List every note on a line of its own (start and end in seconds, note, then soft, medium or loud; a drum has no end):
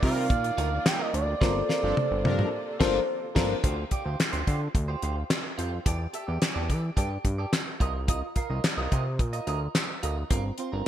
0.00 0.32 C3 loud
0.00 1.39 D#3 medium
0.00 0.26 G3 medium
0.00 1.09 A#3 medium
0.00 1.39 A#3 medium
0.00 1.10 D#4 medium
0.00 1.10 F4 medium
0.00 3.60 F4 medium
0.00 0.26 F4 loud
0.00 0.26 A#4 loud
0.00 1.10 D5 medium
0.00 1.39 D5 medium
0.00 0.89 F5 medium
0.00 kick loud
0.00 open hi-hat medium
0.16 muted clean electric guitar stroke soft
0.30 0.51 A#2 loud
0.30 kick loud
0.30 closed hi-hat medium
0.44 muted clean electric guitar stroke soft
0.44 closed hi-hat soft
0.58 0.79 D2 loud
0.58 0.76 D#4 medium
0.58 0.71 F4 loud
0.58 0.70 A#4 loud
0.58 closed hi-hat medium
0.71 muted clean electric guitar stroke soft
0.85 1.02 G5 medium
0.85 muted clean electric guitar stroke soft
0.85 snare loud
0.85 clap medium
0.85 closed hi-hat medium
0.99 1.12 D#4 medium
0.99 1.13 F4 medium
0.99 1.13 A#4 medium
0.99 1.14 D#5 medium
1.13 1.35 D2 loud
1.13 3.05 D5 medium
1.13 muted clean electric guitar stroke soft
1.13 closed hi-hat medium
1.27 muted clean electric guitar stroke medium
1.41 1.63 G1 loud
1.41 3.61 C3 medium
1.41 2.50 A#3 medium
1.41 3.61 A#3 medium
1.41 1.60 C4 loud
1.41 2.50 F4 medium
1.41 1.55 F4 loud
1.41 3.61 A4 medium
1.41 2.51 A4 medium
1.41 1.54 A#4 loud
1.41 2.51 C5 medium
1.41 kick loud
1.41 snare medium
1.55 muted clean electric guitar stroke soft
1.69 1.83 C4 medium
1.69 1.82 F4 medium
1.69 1.82 A#4 medium
1.69 snare medium
1.83 1.94 G1 loud
1.83 1.95 F3 medium
1.83 1.96 C4 soft
1.83 1.95 D4 loud
1.83 1.96 F4 medium
1.83 1.95 A4 loud
1.83 1.97 C5 soft
1.97 high tom medium
2.11 2.27 G1 loud
2.11 muted clean electric guitar stroke soft
2.25 2.46 G2 loud
2.25 2.49 F3 medium
2.25 2.49 D4 loud
2.25 2.49 A#4 loud
2.25 high tom medium
2.39 muted clean electric guitar stroke medium
2.39 mid tom medium
2.80 2.99 G1 loud
2.80 3.00 F3 loud
2.80 2.99 A#3 loud
2.80 2.99 C4 loud
2.80 3.00 D4 loud
2.80 2.99 F4 loud
2.80 3.00 A4 loud
2.80 3.00 A#4 loud
2.80 3.00 C5 loud
2.80 kick loud
2.80 snare loud
2.80 crash medium
3.35 3.55 G1 loud
3.35 3.55 F3 loud
3.35 3.54 A#3 loud
3.35 3.55 C4 medium
3.35 3.55 D4 loud
3.35 3.55 F4 medium
3.35 3.55 F4 loud
3.35 3.55 A4 medium
3.35 3.55 A#4 medium
3.35 3.55 A#4 loud
3.35 3.55 C5 medium
3.35 kick loud
3.35 snare loud
3.35 crash medium
3.63 3.85 D2 loud
3.63 3.82 F4 medium
3.63 3.77 G4 loud
3.63 3.76 C5 medium
3.63 kick loud
3.63 closed hi-hat loud
3.77 muted clean electric guitar stroke soft
3.91 4.05 F4 medium
3.91 4.04 G4 medium
3.91 4.04 D5 medium
3.91 kick medium
3.91 closed hi-hat medium
4.05 4.16 D2 medium
4.05 4.17 F4 soft
4.05 4.18 G4 soft
4.05 4.18 C5 soft
4.19 muted clean electric guitar stroke soft
4.19 snare loud
4.19 clap medium
4.19 closed hi-hat medium
4.32 4.44 D2 medium
4.32 4.45 F4 medium
4.32 4.46 G4 medium
4.32 4.47 C5 medium
4.32 closed hi-hat medium
4.46 4.68 D3 loud
4.46 4.61 F4 medium
4.46 4.60 G4 medium
4.46 4.59 C5 medium
4.46 kick medium
4.46 closed hi-hat medium
4.60 muted clean electric guitar stroke soft
4.74 4.96 D2 loud
4.74 muted clean electric guitar stroke soft
4.74 kick loud
4.74 closed hi-hat medium
4.88 5.01 F4 soft
4.88 5.02 G4 soft
4.88 5.03 C5 medium
5.02 5.24 D2 loud
5.02 5.21 F4 medium
5.02 5.16 G4 medium
5.02 5.15 C5 medium
5.02 closed hi-hat medium
5.16 muted clean electric guitar stroke soft
5.30 muted clean electric guitar stroke soft
5.30 snare loud
5.30 clap medium
5.30 closed hi-hat medium
5.44 muted clean electric guitar stroke soft
5.58 5.79 F2 medium
5.58 5.76 F4 medium
5.58 5.72 G4 medium
5.58 5.71 C5 medium
5.58 closed hi-hat medium
5.72 muted clean electric guitar stroke soft
5.86 6.07 E2 loud
5.86 6.04 G4 medium
5.86 5.99 A4 medium
5.86 5.98 D5 medium
5.86 kick loud
5.86 closed hi-hat loud
5.99 muted clean electric guitar stroke soft
6.13 6.28 G4 medium
6.13 6.27 A4 medium
6.13 6.27 E5 medium
6.13 closed hi-hat medium
6.27 6.39 E2 loud
6.27 6.40 G4 soft
6.27 6.40 A4 soft
6.27 6.41 D5 medium
6.41 muted clean electric guitar stroke soft
6.41 snare loud
6.41 clap medium
6.41 closed hi-hat medium
6.55 6.71 E2 loud
6.55 6.67 G4 medium
6.55 6.68 A4 medium
6.55 6.69 D5 medium
6.69 6.91 E3 loud
6.69 6.83 G4 medium
6.69 6.83 A4 medium
6.69 6.82 D5 medium
6.69 kick medium
6.69 closed hi-hat medium
6.83 muted clean electric guitar stroke soft
6.97 7.18 G2 loud
6.97 7.15 G4 medium
6.97 7.10 A4 medium
6.97 7.09 D5 medium
6.97 kick loud
6.97 closed hi-hat medium
7.11 muted clean electric guitar stroke soft
7.25 7.46 G2 medium
7.25 muted clean electric guitar stroke soft
7.25 kick medium
7.25 closed hi-hat medium
7.38 7.51 G4 soft
7.38 7.52 A4 medium
7.38 7.52 D5 medium
7.52 muted clean electric guitar stroke soft
7.52 snare medium
7.52 clap medium
7.52 closed hi-hat medium
7.67 muted clean electric guitar stroke soft
7.80 8.23 C2 loud
7.80 7.99 F4 medium
7.80 7.94 A#4 medium
7.80 7.93 D#5 medium
7.80 kick medium
7.80 closed hi-hat medium
7.94 muted clean electric guitar stroke soft
8.08 8.27 F4 medium
8.08 8.22 A#4 medium
8.08 8.21 D#5 medium
8.08 kick loud
8.08 closed hi-hat medium
8.22 muted clean electric guitar stroke soft
8.36 8.50 F4 medium
8.36 8.49 A#4 medium
8.36 8.49 F5 medium
8.36 kick medium
8.36 closed hi-hat medium
8.50 8.60 C2 medium
8.50 8.62 F4 soft
8.50 8.63 A#4 medium
8.50 8.63 D#5 medium
8.64 snare loud
8.64 clap medium
8.64 closed hi-hat medium
8.77 8.88 C2 loud
8.77 8.90 F4 medium
8.77 8.91 A#4 medium
8.77 8.92 D#5 medium
8.91 9.21 C3 loud
8.91 9.06 F4 medium
8.91 9.05 A#4 medium
8.91 9.04 D#5 medium
8.91 kick medium
8.91 closed hi-hat medium
9.05 muted clean electric guitar stroke soft
9.19 9.40 A#2 loud
9.19 muted clean electric guitar stroke soft
9.19 kick loud
9.19 closed hi-hat medium
9.33 9.46 F4 soft
9.33 9.47 A#4 soft
9.33 9.47 D#5 medium
9.33 closed hi-hat soft
9.47 9.68 D2 loud
9.47 9.66 F4 medium
9.47 9.61 A#4 medium
9.47 9.60 D#5 medium
9.47 closed hi-hat medium
9.61 muted clean electric guitar stroke soft
9.75 muted clean electric guitar stroke soft
9.75 snare loud
9.75 clap medium
9.75 closed hi-hat medium
9.89 muted clean electric guitar stroke soft
10.03 10.24 D2 loud
10.03 10.21 F4 medium
10.03 10.17 A#4 medium
10.03 10.15 D#5 medium
10.03 closed hi-hat medium
10.17 muted clean electric guitar stroke soft
10.30 10.52 G1 loud
10.30 10.49 C4 medium
10.30 10.44 F4 medium
10.30 10.43 A#4 medium
10.30 kick loud
10.30 closed hi-hat loud
10.44 muted clean electric guitar stroke soft
10.58 10.73 C4 medium
10.58 10.72 F4 medium
10.58 10.72 C5 medium
10.58 closed hi-hat medium
10.72 10.83 G1 medium
10.72 10.85 C4 soft
10.72 10.86 F4 medium
10.72 10.86 A#4 medium